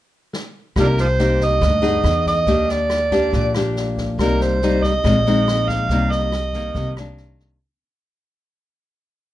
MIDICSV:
0, 0, Header, 1, 5, 480
1, 0, Start_track
1, 0, Key_signature, -3, "minor"
1, 0, Tempo, 427350
1, 864, Time_signature, 4, 2, 24, 8
1, 10488, End_track
2, 0, Start_track
2, 0, Title_t, "Harmonica"
2, 0, Program_c, 0, 22
2, 900, Note_on_c, 0, 62, 53
2, 900, Note_on_c, 0, 65, 53
2, 900, Note_on_c, 0, 70, 76
2, 970, Note_off_c, 0, 62, 0
2, 974, Note_off_c, 0, 65, 0
2, 1106, Note_off_c, 0, 70, 0
2, 1124, Note_on_c, 0, 65, 60
2, 1124, Note_on_c, 0, 72, 86
2, 1204, Note_off_c, 0, 65, 0
2, 1613, Note_on_c, 0, 75, 97
2, 1630, Note_off_c, 0, 72, 0
2, 2549, Note_off_c, 0, 75, 0
2, 2556, Note_on_c, 0, 75, 88
2, 3040, Note_on_c, 0, 74, 77
2, 3057, Note_off_c, 0, 75, 0
2, 3991, Note_off_c, 0, 74, 0
2, 4723, Note_on_c, 0, 70, 66
2, 4961, Note_on_c, 0, 72, 72
2, 4978, Note_off_c, 0, 70, 0
2, 5429, Note_on_c, 0, 75, 91
2, 5446, Note_off_c, 0, 72, 0
2, 6378, Note_on_c, 0, 77, 106
2, 6395, Note_off_c, 0, 75, 0
2, 6868, Note_on_c, 0, 75, 86
2, 6885, Note_off_c, 0, 77, 0
2, 7824, Note_off_c, 0, 75, 0
2, 10488, End_track
3, 0, Start_track
3, 0, Title_t, "Nylon-string guitar"
3, 0, Program_c, 1, 24
3, 857, Note_on_c, 1, 48, 51
3, 862, Note_on_c, 1, 58, 60
3, 869, Note_on_c, 1, 63, 51
3, 877, Note_on_c, 1, 67, 58
3, 1172, Note_off_c, 1, 58, 0
3, 1175, Note_off_c, 1, 63, 0
3, 1180, Note_off_c, 1, 67, 0
3, 1342, Note_on_c, 1, 58, 57
3, 1347, Note_on_c, 1, 63, 54
3, 1349, Note_on_c, 1, 67, 62
3, 1796, Note_off_c, 1, 48, 0
3, 1814, Note_on_c, 1, 43, 54
3, 2025, Note_off_c, 1, 58, 0
3, 2026, Note_off_c, 1, 63, 0
3, 2028, Note_off_c, 1, 67, 0
3, 2042, Note_on_c, 1, 59, 56
3, 2045, Note_on_c, 1, 63, 54
3, 2053, Note_on_c, 1, 68, 60
3, 2275, Note_off_c, 1, 43, 0
3, 2734, Note_off_c, 1, 59, 0
3, 2737, Note_off_c, 1, 63, 0
3, 2738, Note_off_c, 1, 68, 0
3, 2775, Note_on_c, 1, 51, 49
3, 2776, Note_on_c, 1, 58, 52
3, 2780, Note_on_c, 1, 62, 54
3, 2786, Note_on_c, 1, 67, 58
3, 3462, Note_off_c, 1, 62, 0
3, 3463, Note_off_c, 1, 58, 0
3, 3463, Note_off_c, 1, 67, 0
3, 3503, Note_on_c, 1, 58, 56
3, 3503, Note_on_c, 1, 62, 63
3, 3507, Note_on_c, 1, 67, 67
3, 3714, Note_off_c, 1, 51, 0
3, 3754, Note_on_c, 1, 46, 56
3, 3943, Note_off_c, 1, 62, 0
3, 3945, Note_off_c, 1, 58, 0
3, 3946, Note_off_c, 1, 67, 0
3, 3995, Note_on_c, 1, 58, 52
3, 4003, Note_on_c, 1, 62, 54
3, 4005, Note_on_c, 1, 67, 59
3, 4670, Note_off_c, 1, 58, 0
3, 4672, Note_off_c, 1, 62, 0
3, 4675, Note_off_c, 1, 67, 0
3, 4684, Note_off_c, 1, 46, 0
3, 4720, Note_on_c, 1, 48, 49
3, 4723, Note_on_c, 1, 55, 51
3, 4730, Note_on_c, 1, 58, 49
3, 4737, Note_on_c, 1, 63, 57
3, 5153, Note_off_c, 1, 55, 0
3, 5157, Note_off_c, 1, 58, 0
3, 5161, Note_off_c, 1, 63, 0
3, 5205, Note_on_c, 1, 55, 62
3, 5208, Note_on_c, 1, 58, 55
3, 5211, Note_on_c, 1, 63, 64
3, 5515, Note_off_c, 1, 58, 0
3, 5516, Note_off_c, 1, 55, 0
3, 5519, Note_off_c, 1, 63, 0
3, 5647, Note_off_c, 1, 48, 0
3, 5669, Note_on_c, 1, 56, 52
3, 5671, Note_on_c, 1, 46, 54
3, 5672, Note_on_c, 1, 60, 55
3, 5683, Note_on_c, 1, 63, 59
3, 5805, Note_off_c, 1, 56, 0
3, 5808, Note_off_c, 1, 60, 0
3, 5813, Note_off_c, 1, 63, 0
3, 5918, Note_on_c, 1, 56, 52
3, 5925, Note_on_c, 1, 60, 54
3, 5930, Note_on_c, 1, 63, 57
3, 6591, Note_off_c, 1, 56, 0
3, 6594, Note_off_c, 1, 60, 0
3, 6596, Note_off_c, 1, 63, 0
3, 6602, Note_off_c, 1, 46, 0
3, 6640, Note_on_c, 1, 48, 52
3, 6644, Note_on_c, 1, 55, 53
3, 6648, Note_on_c, 1, 58, 56
3, 6649, Note_on_c, 1, 63, 59
3, 7109, Note_off_c, 1, 55, 0
3, 7110, Note_off_c, 1, 58, 0
3, 7112, Note_off_c, 1, 63, 0
3, 7358, Note_on_c, 1, 51, 54
3, 7366, Note_on_c, 1, 58, 58
3, 7566, Note_off_c, 1, 48, 0
3, 7601, Note_on_c, 1, 48, 53
3, 7791, Note_off_c, 1, 51, 0
3, 7795, Note_off_c, 1, 58, 0
3, 7841, Note_on_c, 1, 51, 57
3, 7847, Note_on_c, 1, 58, 47
3, 7851, Note_on_c, 1, 62, 53
3, 8514, Note_off_c, 1, 51, 0
3, 8515, Note_off_c, 1, 58, 0
3, 8515, Note_off_c, 1, 62, 0
3, 8527, Note_off_c, 1, 48, 0
3, 10488, End_track
4, 0, Start_track
4, 0, Title_t, "Upright bass"
4, 0, Program_c, 2, 32
4, 855, Note_on_c, 2, 36, 71
4, 1775, Note_off_c, 2, 36, 0
4, 1814, Note_on_c, 2, 38, 80
4, 2265, Note_off_c, 2, 38, 0
4, 2287, Note_on_c, 2, 40, 84
4, 2773, Note_off_c, 2, 40, 0
4, 2773, Note_on_c, 2, 39, 85
4, 3692, Note_off_c, 2, 39, 0
4, 3744, Note_on_c, 2, 34, 79
4, 4704, Note_off_c, 2, 34, 0
4, 4704, Note_on_c, 2, 36, 72
4, 5617, Note_off_c, 2, 36, 0
4, 5659, Note_on_c, 2, 34, 79
4, 6619, Note_off_c, 2, 34, 0
4, 6619, Note_on_c, 2, 36, 76
4, 7535, Note_off_c, 2, 36, 0
4, 7580, Note_on_c, 2, 36, 77
4, 8495, Note_off_c, 2, 36, 0
4, 10488, End_track
5, 0, Start_track
5, 0, Title_t, "Drums"
5, 375, Note_on_c, 9, 38, 41
5, 487, Note_off_c, 9, 38, 0
5, 852, Note_on_c, 9, 36, 52
5, 854, Note_on_c, 9, 37, 53
5, 854, Note_on_c, 9, 38, 23
5, 964, Note_off_c, 9, 36, 0
5, 966, Note_off_c, 9, 37, 0
5, 966, Note_off_c, 9, 38, 0
5, 1095, Note_on_c, 9, 38, 24
5, 1207, Note_off_c, 9, 38, 0
5, 1334, Note_on_c, 9, 38, 23
5, 1446, Note_off_c, 9, 38, 0
5, 1573, Note_on_c, 9, 36, 21
5, 1578, Note_on_c, 9, 38, 23
5, 1685, Note_off_c, 9, 36, 0
5, 1690, Note_off_c, 9, 38, 0
5, 1813, Note_on_c, 9, 36, 50
5, 1816, Note_on_c, 9, 37, 55
5, 1816, Note_on_c, 9, 38, 21
5, 1926, Note_off_c, 9, 36, 0
5, 1928, Note_off_c, 9, 37, 0
5, 1928, Note_off_c, 9, 38, 0
5, 2053, Note_on_c, 9, 38, 21
5, 2165, Note_off_c, 9, 38, 0
5, 2294, Note_on_c, 9, 37, 53
5, 2294, Note_on_c, 9, 38, 20
5, 2406, Note_off_c, 9, 37, 0
5, 2406, Note_off_c, 9, 38, 0
5, 2533, Note_on_c, 9, 36, 22
5, 2541, Note_on_c, 9, 38, 23
5, 2646, Note_off_c, 9, 36, 0
5, 2653, Note_off_c, 9, 38, 0
5, 2768, Note_on_c, 9, 38, 21
5, 2772, Note_on_c, 9, 36, 55
5, 2880, Note_off_c, 9, 38, 0
5, 2884, Note_off_c, 9, 36, 0
5, 3021, Note_on_c, 9, 38, 23
5, 3134, Note_off_c, 9, 38, 0
5, 3253, Note_on_c, 9, 37, 50
5, 3253, Note_on_c, 9, 38, 23
5, 3365, Note_off_c, 9, 37, 0
5, 3365, Note_off_c, 9, 38, 0
5, 3497, Note_on_c, 9, 36, 22
5, 3499, Note_on_c, 9, 38, 21
5, 3609, Note_off_c, 9, 36, 0
5, 3612, Note_off_c, 9, 38, 0
5, 3739, Note_on_c, 9, 36, 52
5, 3739, Note_on_c, 9, 38, 21
5, 3851, Note_off_c, 9, 36, 0
5, 3851, Note_off_c, 9, 38, 0
5, 3980, Note_on_c, 9, 37, 53
5, 3980, Note_on_c, 9, 38, 23
5, 4092, Note_off_c, 9, 37, 0
5, 4092, Note_off_c, 9, 38, 0
5, 4225, Note_on_c, 9, 38, 24
5, 4337, Note_off_c, 9, 38, 0
5, 4461, Note_on_c, 9, 36, 22
5, 4466, Note_on_c, 9, 38, 23
5, 4573, Note_off_c, 9, 36, 0
5, 4579, Note_off_c, 9, 38, 0
5, 4703, Note_on_c, 9, 36, 51
5, 4707, Note_on_c, 9, 37, 57
5, 4707, Note_on_c, 9, 38, 22
5, 4815, Note_off_c, 9, 36, 0
5, 4819, Note_off_c, 9, 37, 0
5, 4819, Note_off_c, 9, 38, 0
5, 4948, Note_on_c, 9, 38, 23
5, 5060, Note_off_c, 9, 38, 0
5, 5186, Note_on_c, 9, 38, 23
5, 5298, Note_off_c, 9, 38, 0
5, 5422, Note_on_c, 9, 36, 22
5, 5430, Note_on_c, 9, 38, 22
5, 5535, Note_off_c, 9, 36, 0
5, 5543, Note_off_c, 9, 38, 0
5, 5662, Note_on_c, 9, 36, 50
5, 5665, Note_on_c, 9, 37, 45
5, 5665, Note_on_c, 9, 38, 21
5, 5774, Note_off_c, 9, 36, 0
5, 5777, Note_off_c, 9, 37, 0
5, 5777, Note_off_c, 9, 38, 0
5, 5914, Note_on_c, 9, 38, 20
5, 6026, Note_off_c, 9, 38, 0
5, 6152, Note_on_c, 9, 37, 52
5, 6152, Note_on_c, 9, 38, 22
5, 6264, Note_off_c, 9, 37, 0
5, 6264, Note_off_c, 9, 38, 0
5, 6381, Note_on_c, 9, 36, 22
5, 6389, Note_on_c, 9, 38, 23
5, 6494, Note_off_c, 9, 36, 0
5, 6501, Note_off_c, 9, 38, 0
5, 6620, Note_on_c, 9, 36, 56
5, 6620, Note_on_c, 9, 38, 23
5, 6732, Note_off_c, 9, 36, 0
5, 6732, Note_off_c, 9, 38, 0
5, 6867, Note_on_c, 9, 38, 24
5, 6979, Note_off_c, 9, 38, 0
5, 7100, Note_on_c, 9, 37, 58
5, 7100, Note_on_c, 9, 38, 21
5, 7212, Note_off_c, 9, 37, 0
5, 7212, Note_off_c, 9, 38, 0
5, 7337, Note_on_c, 9, 36, 23
5, 7337, Note_on_c, 9, 38, 22
5, 7449, Note_off_c, 9, 38, 0
5, 7450, Note_off_c, 9, 36, 0
5, 7578, Note_on_c, 9, 36, 52
5, 7578, Note_on_c, 9, 38, 20
5, 7691, Note_off_c, 9, 36, 0
5, 7691, Note_off_c, 9, 38, 0
5, 7826, Note_on_c, 9, 37, 58
5, 7826, Note_on_c, 9, 38, 22
5, 7938, Note_off_c, 9, 37, 0
5, 7938, Note_off_c, 9, 38, 0
5, 8056, Note_on_c, 9, 38, 19
5, 8168, Note_off_c, 9, 38, 0
5, 8299, Note_on_c, 9, 36, 21
5, 8306, Note_on_c, 9, 38, 21
5, 8411, Note_off_c, 9, 36, 0
5, 8418, Note_off_c, 9, 38, 0
5, 10488, End_track
0, 0, End_of_file